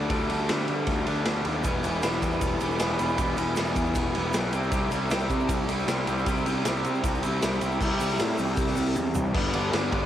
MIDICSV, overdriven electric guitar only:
0, 0, Header, 1, 2, 480
1, 0, Start_track
1, 0, Tempo, 385109
1, 125, Time_signature, 4, 2, 24, 8
1, 12538, End_track
2, 0, Start_track
2, 0, Title_t, "Overdriven electric guitar"
2, 0, Program_c, 0, 29
2, 0, Note_on_c, 0, 62, 74
2, 119, Note_on_c, 0, 50, 85
2, 129, Note_on_c, 0, 55, 88
2, 132, Note_off_c, 0, 62, 0
2, 136, Note_on_c, 0, 57, 82
2, 147, Note_on_c, 0, 62, 94
2, 348, Note_off_c, 0, 62, 0
2, 361, Note_off_c, 0, 57, 0
2, 363, Note_on_c, 0, 62, 69
2, 376, Note_on_c, 0, 57, 67
2, 384, Note_off_c, 0, 55, 0
2, 389, Note_on_c, 0, 55, 56
2, 582, Note_off_c, 0, 50, 0
2, 597, Note_on_c, 0, 50, 86
2, 601, Note_off_c, 0, 57, 0
2, 607, Note_off_c, 0, 55, 0
2, 611, Note_off_c, 0, 62, 0
2, 612, Note_on_c, 0, 55, 86
2, 616, Note_on_c, 0, 57, 84
2, 626, Note_on_c, 0, 62, 86
2, 1306, Note_off_c, 0, 62, 0
2, 1321, Note_on_c, 0, 62, 64
2, 1323, Note_off_c, 0, 57, 0
2, 1338, Note_on_c, 0, 57, 63
2, 1347, Note_off_c, 0, 55, 0
2, 1352, Note_on_c, 0, 55, 54
2, 1554, Note_off_c, 0, 50, 0
2, 1566, Note_off_c, 0, 55, 0
2, 1567, Note_off_c, 0, 57, 0
2, 1569, Note_on_c, 0, 50, 69
2, 1571, Note_on_c, 0, 55, 77
2, 1577, Note_off_c, 0, 62, 0
2, 1582, Note_on_c, 0, 57, 74
2, 1592, Note_on_c, 0, 62, 73
2, 1788, Note_off_c, 0, 62, 0
2, 1803, Note_on_c, 0, 62, 60
2, 1804, Note_off_c, 0, 57, 0
2, 1819, Note_on_c, 0, 57, 56
2, 1823, Note_off_c, 0, 55, 0
2, 1828, Note_on_c, 0, 55, 53
2, 2031, Note_off_c, 0, 62, 0
2, 2034, Note_off_c, 0, 50, 0
2, 2038, Note_on_c, 0, 52, 77
2, 2039, Note_off_c, 0, 57, 0
2, 2048, Note_off_c, 0, 55, 0
2, 2053, Note_on_c, 0, 55, 86
2, 2056, Note_on_c, 0, 59, 97
2, 2073, Note_on_c, 0, 64, 93
2, 2286, Note_off_c, 0, 64, 0
2, 2291, Note_on_c, 0, 64, 72
2, 2297, Note_off_c, 0, 59, 0
2, 2302, Note_on_c, 0, 59, 62
2, 2313, Note_off_c, 0, 55, 0
2, 2318, Note_on_c, 0, 55, 62
2, 2519, Note_off_c, 0, 52, 0
2, 2524, Note_on_c, 0, 52, 90
2, 2532, Note_off_c, 0, 55, 0
2, 2537, Note_on_c, 0, 55, 85
2, 2538, Note_off_c, 0, 59, 0
2, 2543, Note_on_c, 0, 59, 87
2, 2546, Note_off_c, 0, 64, 0
2, 2551, Note_on_c, 0, 64, 89
2, 3239, Note_off_c, 0, 59, 0
2, 3239, Note_off_c, 0, 64, 0
2, 3244, Note_on_c, 0, 64, 65
2, 3254, Note_on_c, 0, 59, 56
2, 3264, Note_off_c, 0, 55, 0
2, 3269, Note_on_c, 0, 55, 61
2, 3472, Note_off_c, 0, 52, 0
2, 3477, Note_on_c, 0, 52, 71
2, 3480, Note_off_c, 0, 59, 0
2, 3485, Note_off_c, 0, 55, 0
2, 3490, Note_on_c, 0, 55, 78
2, 3495, Note_on_c, 0, 59, 74
2, 3500, Note_off_c, 0, 64, 0
2, 3505, Note_on_c, 0, 64, 72
2, 3726, Note_off_c, 0, 64, 0
2, 3731, Note_on_c, 0, 64, 68
2, 3735, Note_off_c, 0, 59, 0
2, 3748, Note_off_c, 0, 55, 0
2, 3750, Note_on_c, 0, 59, 63
2, 3753, Note_on_c, 0, 55, 51
2, 3954, Note_off_c, 0, 52, 0
2, 3959, Note_on_c, 0, 52, 90
2, 3962, Note_off_c, 0, 59, 0
2, 3963, Note_off_c, 0, 55, 0
2, 3968, Note_on_c, 0, 55, 99
2, 3977, Note_off_c, 0, 64, 0
2, 3977, Note_on_c, 0, 59, 102
2, 3982, Note_on_c, 0, 64, 99
2, 4189, Note_off_c, 0, 64, 0
2, 4194, Note_off_c, 0, 59, 0
2, 4194, Note_on_c, 0, 64, 66
2, 4209, Note_on_c, 0, 59, 64
2, 4220, Note_off_c, 0, 55, 0
2, 4225, Note_on_c, 0, 55, 58
2, 4419, Note_off_c, 0, 52, 0
2, 4424, Note_on_c, 0, 52, 97
2, 4426, Note_off_c, 0, 59, 0
2, 4430, Note_off_c, 0, 55, 0
2, 4435, Note_on_c, 0, 55, 82
2, 4441, Note_on_c, 0, 59, 94
2, 4447, Note_off_c, 0, 64, 0
2, 4452, Note_on_c, 0, 64, 88
2, 5158, Note_off_c, 0, 59, 0
2, 5158, Note_off_c, 0, 64, 0
2, 5163, Note_on_c, 0, 64, 69
2, 5173, Note_on_c, 0, 59, 59
2, 5180, Note_off_c, 0, 55, 0
2, 5185, Note_on_c, 0, 55, 59
2, 5383, Note_off_c, 0, 52, 0
2, 5388, Note_on_c, 0, 52, 64
2, 5395, Note_off_c, 0, 59, 0
2, 5398, Note_off_c, 0, 55, 0
2, 5403, Note_on_c, 0, 55, 76
2, 5410, Note_on_c, 0, 59, 76
2, 5416, Note_off_c, 0, 64, 0
2, 5421, Note_on_c, 0, 64, 80
2, 5633, Note_off_c, 0, 64, 0
2, 5637, Note_off_c, 0, 59, 0
2, 5638, Note_on_c, 0, 64, 86
2, 5646, Note_on_c, 0, 60, 85
2, 5653, Note_off_c, 0, 55, 0
2, 5658, Note_on_c, 0, 55, 73
2, 5665, Note_off_c, 0, 52, 0
2, 5670, Note_on_c, 0, 48, 66
2, 5868, Note_off_c, 0, 48, 0
2, 5873, Note_on_c, 0, 48, 90
2, 5883, Note_off_c, 0, 55, 0
2, 5884, Note_off_c, 0, 60, 0
2, 5888, Note_on_c, 0, 55, 89
2, 5889, Note_on_c, 0, 60, 86
2, 5896, Note_off_c, 0, 64, 0
2, 5901, Note_on_c, 0, 64, 103
2, 6107, Note_off_c, 0, 64, 0
2, 6112, Note_on_c, 0, 64, 78
2, 6123, Note_off_c, 0, 60, 0
2, 6128, Note_on_c, 0, 60, 64
2, 6140, Note_off_c, 0, 55, 0
2, 6145, Note_on_c, 0, 55, 70
2, 6352, Note_off_c, 0, 48, 0
2, 6357, Note_on_c, 0, 48, 87
2, 6367, Note_off_c, 0, 55, 0
2, 6369, Note_off_c, 0, 60, 0
2, 6372, Note_on_c, 0, 55, 87
2, 6374, Note_on_c, 0, 60, 85
2, 6381, Note_off_c, 0, 64, 0
2, 6386, Note_on_c, 0, 64, 95
2, 7081, Note_off_c, 0, 64, 0
2, 7086, Note_on_c, 0, 64, 71
2, 7095, Note_off_c, 0, 60, 0
2, 7100, Note_on_c, 0, 60, 62
2, 7102, Note_off_c, 0, 55, 0
2, 7107, Note_on_c, 0, 55, 63
2, 7310, Note_off_c, 0, 48, 0
2, 7315, Note_on_c, 0, 48, 66
2, 7320, Note_off_c, 0, 55, 0
2, 7325, Note_on_c, 0, 55, 77
2, 7328, Note_off_c, 0, 60, 0
2, 7333, Note_on_c, 0, 60, 80
2, 7337, Note_off_c, 0, 64, 0
2, 7342, Note_on_c, 0, 64, 85
2, 7554, Note_off_c, 0, 64, 0
2, 7559, Note_on_c, 0, 64, 73
2, 7565, Note_off_c, 0, 60, 0
2, 7570, Note_on_c, 0, 60, 69
2, 7579, Note_off_c, 0, 55, 0
2, 7584, Note_on_c, 0, 55, 61
2, 7800, Note_off_c, 0, 48, 0
2, 7802, Note_off_c, 0, 55, 0
2, 7805, Note_on_c, 0, 48, 91
2, 7809, Note_off_c, 0, 60, 0
2, 7817, Note_on_c, 0, 55, 88
2, 7823, Note_off_c, 0, 64, 0
2, 7824, Note_on_c, 0, 60, 110
2, 7838, Note_on_c, 0, 64, 99
2, 8027, Note_off_c, 0, 64, 0
2, 8040, Note_off_c, 0, 60, 0
2, 8042, Note_on_c, 0, 64, 81
2, 8051, Note_off_c, 0, 55, 0
2, 8055, Note_on_c, 0, 60, 68
2, 8066, Note_on_c, 0, 55, 59
2, 8255, Note_off_c, 0, 48, 0
2, 8270, Note_on_c, 0, 48, 95
2, 8275, Note_off_c, 0, 55, 0
2, 8282, Note_off_c, 0, 60, 0
2, 8287, Note_off_c, 0, 64, 0
2, 8290, Note_on_c, 0, 55, 94
2, 8297, Note_on_c, 0, 60, 98
2, 8302, Note_on_c, 0, 64, 102
2, 8986, Note_off_c, 0, 64, 0
2, 9001, Note_on_c, 0, 64, 74
2, 9002, Note_off_c, 0, 60, 0
2, 9008, Note_off_c, 0, 55, 0
2, 9017, Note_on_c, 0, 60, 63
2, 9023, Note_on_c, 0, 55, 55
2, 9231, Note_off_c, 0, 48, 0
2, 9238, Note_off_c, 0, 55, 0
2, 9246, Note_on_c, 0, 48, 78
2, 9250, Note_off_c, 0, 60, 0
2, 9253, Note_on_c, 0, 55, 86
2, 9257, Note_off_c, 0, 64, 0
2, 9265, Note_on_c, 0, 60, 86
2, 9271, Note_on_c, 0, 64, 76
2, 9460, Note_off_c, 0, 64, 0
2, 9475, Note_on_c, 0, 64, 73
2, 9484, Note_off_c, 0, 60, 0
2, 9496, Note_off_c, 0, 55, 0
2, 9499, Note_on_c, 0, 60, 55
2, 9511, Note_on_c, 0, 55, 58
2, 9708, Note_off_c, 0, 64, 0
2, 9714, Note_off_c, 0, 48, 0
2, 9721, Note_off_c, 0, 60, 0
2, 9726, Note_off_c, 0, 55, 0
2, 9738, Note_on_c, 0, 48, 76
2, 9748, Note_on_c, 0, 55, 88
2, 9755, Note_on_c, 0, 60, 93
2, 9767, Note_on_c, 0, 64, 87
2, 11630, Note_off_c, 0, 55, 0
2, 11632, Note_on_c, 0, 43, 90
2, 11633, Note_off_c, 0, 48, 0
2, 11638, Note_on_c, 0, 50, 99
2, 11644, Note_off_c, 0, 60, 0
2, 11645, Note_off_c, 0, 64, 0
2, 11645, Note_on_c, 0, 55, 100
2, 11650, Note_on_c, 0, 62, 91
2, 11651, Note_on_c, 0, 59, 98
2, 11861, Note_off_c, 0, 43, 0
2, 11869, Note_off_c, 0, 50, 0
2, 11873, Note_off_c, 0, 55, 0
2, 11875, Note_off_c, 0, 59, 0
2, 11876, Note_on_c, 0, 43, 90
2, 11884, Note_off_c, 0, 62, 0
2, 11884, Note_on_c, 0, 50, 89
2, 11888, Note_on_c, 0, 55, 98
2, 11890, Note_on_c, 0, 59, 102
2, 11899, Note_on_c, 0, 62, 104
2, 12099, Note_off_c, 0, 43, 0
2, 12106, Note_off_c, 0, 50, 0
2, 12106, Note_off_c, 0, 55, 0
2, 12109, Note_off_c, 0, 59, 0
2, 12114, Note_on_c, 0, 43, 100
2, 12115, Note_off_c, 0, 62, 0
2, 12121, Note_on_c, 0, 50, 97
2, 12121, Note_on_c, 0, 55, 92
2, 12124, Note_on_c, 0, 59, 109
2, 12130, Note_on_c, 0, 62, 103
2, 12338, Note_off_c, 0, 43, 0
2, 12344, Note_off_c, 0, 50, 0
2, 12345, Note_off_c, 0, 55, 0
2, 12345, Note_off_c, 0, 59, 0
2, 12353, Note_on_c, 0, 43, 85
2, 12354, Note_off_c, 0, 62, 0
2, 12359, Note_on_c, 0, 50, 84
2, 12360, Note_on_c, 0, 55, 94
2, 12360, Note_on_c, 0, 59, 94
2, 12369, Note_on_c, 0, 62, 91
2, 12538, Note_off_c, 0, 43, 0
2, 12538, Note_off_c, 0, 50, 0
2, 12538, Note_off_c, 0, 55, 0
2, 12538, Note_off_c, 0, 59, 0
2, 12538, Note_off_c, 0, 62, 0
2, 12538, End_track
0, 0, End_of_file